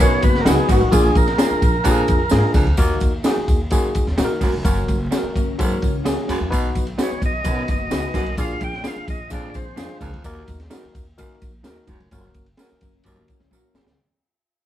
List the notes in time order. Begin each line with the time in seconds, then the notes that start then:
0.00 F#2 B2 B3 D#4 F#4 G#4 C#5, kick, tambourine
0.05 B4
0.22 F#1 A#3 F#4 B4, kick, ride, tambourine
0.35 snare
0.41 A#4
0.45 C#2 F#3 B3 D#4 F#4 G#4 A#4 B4, snare, ride, tambourine
0.51 B4
0.69 G#1 F#2 D#4 F#4 B4, kick, ride, tambourine
0.81 A1
0.91 A#1 A#2 A#3 D4 F4 G#4, kick, ride, tambourine
1.15 A#1 A#4, kick, ride, tambourine
1.27 snare, ride
1.38 A#3 C#4 D4 F4 G#4 A#4, snare, ride, tambourine
1.45 D4
1.51 muted upright bass stroke
1.62 A#1, kick, ride, tambourine
1.84 F2 A#2 A#3 D4 F4 G4, kick, ride, tambourine
1.91 G#4
2.08 F2, kick, ride, tambourine
2.29 G#2 A#3 D4 F4 G#4 A#4, snare, ride, tambourine
2.54 C#2 F2 D4 G#4 A#4, kick, ride, tambourine
2.67 D2, ride
2.77 D#2 A#3 D#4 F#4 A#4, kick, ride, tambourine
3.00 D#2, kick, ride, tambourine
3.24 A#3 D#4 F#4 G#4 A#4, snare, ride, tambourine
3.37 muted upright bass stroke
3.48 D#2, kick, ride, tambourine
3.70 F#2 A#3 D#4 F#4 G#4, kick, ride, tambourine
3.95 E2, kick, ride, tambourine
4.07 D#2, snare
4.17 A#2 A#3 D#4 F#4 G#4 A#4, snare, ride, tambourine
4.25 A#4
4.41 E1 F#2 D#4 F#4 A#4, kick, open hi-hat, ride, tambourine
4.53 F1
4.64 F#1 F#2 A#3 C#4 F#4 A#4, kick, hi-hat pedal, ride, tambourine
4.88 F#1, kick, ride, tambourine
5.11 A#3 C#4 F#4 G#4 A#4, snare, ride, tambourine
5.17 A#4
5.23 muted upright bass stroke
5.36 F#1 C#4 A#4, kick, ride, tambourine
5.59 F#2 G#2 A#3 C#4 F#4 A4, kick, ride, tambourine
5.64 A#4
5.81 C#2 E3 C#4, kick, ride, tambourine
6.05 A#3 C#4 F#4 G#4 A#4, snare, ride, tambourine
6.28 F#2 C#4 F#4 A#4, ride, tambourine
6.40 E2
6.50 B1 B2 B3 D#4 F#4 B4, kick, ride, tambourine
6.75 B1, kick, ride, tambourine
6.87 ride
6.98 B3 D#4 F#4 B4, snare, ride, tambourine
7.02 C#5
7.11 muted upright bass stroke
7.22 B1 D#5, kick, ride, tambourine
7.44 F#2 B2 B3 D#4 F#4 B4, kick, ride, tambourine
7.68 F#1 A#3 F#4 D#5, kick, ride, tambourine
7.90 C#2 B3 D#4 F#4 G#4 B4, snare, ride, tambourine
8.14 B1 F#2 A#3 D#4 F#4 B4, kick, ride, tambourine
8.26 ride
8.37 A#1 A#2 A#3 D4 F4 G#4 F5, kick, ride, tambourine
8.61 A#1 G5, kick, ride, tambourine
8.73 snare
8.83 A#3 D4 F4 G#4 A#4 F5, snare, ride, tambourine
8.96 muted upright bass stroke
9.08 A#1 D#5, kick, ride, tambourine
9.30 F2 A#2 G#3 A#3 D4 F4 G#4, kick, ride, tambourine
9.34 D5
9.50 D5
9.54 A#1 C4 G#4 C5, kick, ride, tambourine
9.76 F2 G#3 A#3 D4 F4 G#4 A#4, snare, ride, tambourine
10.01 C#2 F2 D4 G#4 A#4, kick, ride, tambourine
10.13 D2, ride
10.24 D#2 A#3 D#4 F#4 A#4, kick, ride, tambourine
10.48 D#2, kick, ride, tambourine
10.60 snare, ride
10.70 A#3 D#4 F#4 A#4, snare, ride, tambourine
10.84 muted upright bass stroke
10.95 D#2, kick, ride, tambourine
11.18 F#2 D#3 A#3 D#4 F#4 A#4, kick, ride, tambourine
11.42 A#1, kick, ride, tambourine
11.63 D#2 A#3 D#4 F#4 A#4, snare, ride, tambourine
11.87 E1 F#2 D#4 F#4 A#4, kick, ride, tambourine
12.00 F1, ride
12.11 F#1 F#2 A#3 C#4 F#4 A#4, kick, ride, tambourine
12.34 F#1, kick, ride, tambourine
12.46 ride
12.57 A#3 C#4 F#4 A#4, snare, ride, tambourine
12.71 muted upright bass stroke
12.81 F#1 C#4 A#4, kick, ride, tambourine
13.03 D#2 F#2 A#3 C#4 F#4 A#4, kick, ride, tambourine
13.17 F#1
13.28 E3 C#4, kick, ride, tambourine
13.40 C#2, snare
13.51 A#1 A#3 C#4 F#4 A#4, tambourine
13.74 F#1 F#2 C#4 F#4 A#4, snare, tambourine
13.86 C#2, snare